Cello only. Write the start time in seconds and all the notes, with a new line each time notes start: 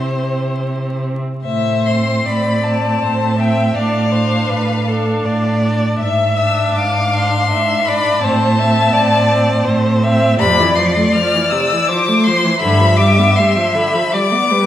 Already playing: C3
1.45 A2
2.26 A2
3.02 A2
3.75 A2
4.49 A2
5.24 A2
6.00 G#2
6.75 G#2
7.51 G#2
8.22 A2
8.94 A2
9.66 A2
10.40 F2
12.61 G2